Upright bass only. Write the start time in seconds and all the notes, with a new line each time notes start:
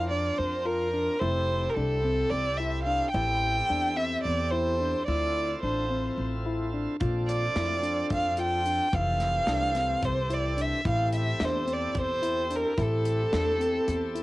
Already playing: F2
0.39 F2
1.21 F1
1.76 C2
2.31 C2
3.14 A1
3.70 E2
4.25 E2
5.08 D2
5.63 A1
6.18 A1
7.01 A#1
7.56 F2
8.11 F2
8.93 F1
9.47 C2
10.03 C2
10.85 A1
11.40 E2
11.95 E2
12.78 A1
13.33 E2
13.88 E2